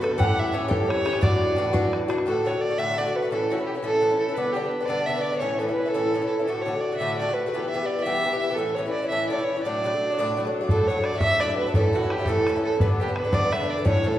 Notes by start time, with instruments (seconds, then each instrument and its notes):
0.01 bouzouki D3 B3 F#4, fiddle A4, bodhran
0.11 bodhran
0.18 bouzouki A2 E3 C#4 G4, fiddle F#5, bodhran
0.39 fiddle E5
0.52 bouzouki A2 E3 C#4 G4, fiddle C#5
0.68 bouzouki A2 E3 C#4 G4, fiddle A4, bodhran
0.89 fiddle C#5, bodhran
1.05 bouzouki E3 C#4 G4, bodhran
1.13 bodhran
1.21 bouzouki A2 E3 D4 F#4, fiddle D5, bodhran
1.56 bouzouki A2 E3 D4 F#4
1.73 bouzouki A2 E3 D4 F#4, bodhran
1.93 bodhran
2.08 bouzouki E3 D4 F#4, bodhran
2.18 bodhran
2.26 bouzouki A2 D3 A3 F#4, fiddle A4
2.45 bouzouki A2 D3 A3 F#4, fiddle C#5
2.53 bouzouki D3 A3 F#4
2.61 fiddle D5
2.70 bouzouki D3 A3 F#4
2.78 bouzouki A2 D3 A3 F#4, fiddle E5
2.98 bouzouki A2 D3 A3 F#4, fiddle D5
3.06 bouzouki D3 A3 F#4
3.16 fiddle B4
3.22 bouzouki D3 A3 F#4
3.31 bouzouki A2 E3 C#4 E4, fiddle A4
3.50 bouzouki A2 E3 C#4 E4, fiddle F#4
3.58 bouzouki E3 C#4 E4
3.66 fiddle G4
3.75 bouzouki E3 C#4 E4
3.83 bouzouki A2 E3 C#4 E4, fiddle A4
4.01 bouzouki A2 E3 C#4 E4
4.10 bouzouki E3 C#4 E4
4.19 fiddle A4
4.28 bouzouki E3 C#4 E4
4.34 bouzouki G2 D3 B3 D4, fiddle B4
4.52 bouzouki G2 D3 B3, fiddle G4
4.57 bouzouki D4
4.63 bouzouki D3 B3 D4
4.69 fiddle B4
4.80 bouzouki D3 B3 D4
4.86 bouzouki G2 D3 B3 D4, fiddle D5
5.06 bouzouki G2 D3 B3 D4, fiddle E5
5.16 bouzouki D3 B3 D4
5.21 fiddle D5
5.32 bouzouki D3 B3 D4
5.38 bouzouki A2 E3 C#4 E4, fiddle C#5
5.59 bouzouki A2 E3 C#4 E4, fiddle A4
5.68 bouzouki E3 C#4 E4
5.73 fiddle B4
5.86 bouzouki E3 C#4 E4, fiddle A4
5.94 bouzouki A2 E3 C#4 E4
6.13 bouzouki A2 E3 C#4 E4
6.22 bouzouki E3 C#4 E4
6.27 fiddle A4
6.39 bouzouki E3 C#4 E4
6.44 bouzouki A2 D3, fiddle A4
6.48 bouzouki A3 F#4
6.62 bouzouki A2, fiddle C#5
6.66 bouzouki D3 A3 F#4
6.74 bouzouki D3 A3 F#4
6.81 fiddle D5
6.92 bouzouki D3 A3 F#4
6.97 bouzouki A2 D3, fiddle E5
7.02 bouzouki A3 F#4
7.18 bouzouki A2 D3 A3 F#4, fiddle D5
7.28 bouzouki D3 A3 F#4
7.33 fiddle B4
7.46 bouzouki D3 A3 F#4
7.50 bouzouki G2, fiddle B4
7.54 bouzouki E3 B3 G4
7.70 fiddle E5
7.74 bouzouki G2 E3 B3 G4
7.82 bouzouki E3 B3 G4, fiddle D5
7.98 bouzouki E3 B3 G4
8.03 bouzouki G2 E3 B3 G4, fiddle E5
8.24 bouzouki G2 E3 B3 G4
8.32 bouzouki E3 B3 G4
8.39 fiddle E5
8.50 bouzouki E3 B3 G4
8.55 bouzouki A2 E3 C#4 E4, fiddle A4
8.75 bouzouki A2 E3 C#4, fiddle C#5
8.79 bouzouki E4
8.86 bouzouki E3 C#4 E4
8.92 fiddle D5
9.02 bouzouki E3 C#4 E4
9.09 bouzouki A2 E3 C#4 E4, fiddle E5
9.29 bouzouki A2 E3 C#4 E4, fiddle D5
9.38 bouzouki E3 C#4 E4
9.44 fiddle C#5
9.56 bouzouki E3 C#4 E4
9.63 bouzouki A2 F#3 A3, fiddle D5
9.67 bouzouki D4
9.84 bouzouki A2 F#3 A3 D4
9.93 bouzouki F#3 A3 D4
10.10 bouzouki F#3 A3 D4
10.18 bouzouki A2 F#3 A3 D4
10.37 bouzouki A2 F#3 A3 D4
10.45 bouzouki F#3 A3 D4
10.61 bouzouki F#3 A3 D4
10.69 bouzouki A2 F#3 A3 D4, fiddle A4, bodhran
10.88 bouzouki A2 F#3 A3 D4, fiddle C#5
10.97 bouzouki F#3 A3 D4
11.04 fiddle D5, bodhran
11.13 bouzouki F#3 A3 D4
11.20 bouzouki A2 F#3 A3 D4, fiddle E5, bodhran
11.31 bodhran
11.40 bouzouki A2 F#3 A3 D4, fiddle D5, bodhran
11.49 bouzouki F#3 A3 D4
11.57 fiddle B4
11.66 bouzouki F#3 A3 D4
11.74 bouzouki A2 E3 C#4 E4, fiddle A4, bodhran
11.93 bouzouki A2 E3 C#4 E4, fiddle F#4
12.03 bouzouki E3 C#4 E4
12.10 fiddle G4, bodhran
12.19 bouzouki E3 C#4 E4
12.26 bouzouki A2 E3 C#4 E4, fiddle A4, bodhran
12.37 bodhran
12.47 bouzouki A2 E3 C#4 E4, bodhran
12.56 bouzouki E3 C#4 E4
12.65 fiddle A4
12.73 bouzouki E3 C#4 E4
12.80 bouzouki G2 D3 B3 D4, fiddle B4, bodhran
13.00 bouzouki G2 D3 B3 D4, fiddle G4
13.08 bouzouki D3 B3 D4
13.16 fiddle B4, bodhran
13.25 bouzouki D3 B3 D4
13.33 bouzouki G2 D3 B3 D4, fiddle D5, bodhran
13.43 bodhran
13.52 bouzouki G2 D3 B3 D4, fiddle E5, bodhran
13.60 bouzouki D3 B3 D4
13.70 fiddle D5
13.77 bouzouki D3 B3 D4
13.85 bouzouki A2 E3 C#4 E4, fiddle C#5, bodhran
14.04 bouzouki A2 E3 C#4 E4, fiddle A4
14.12 bouzouki E3 C#4 E4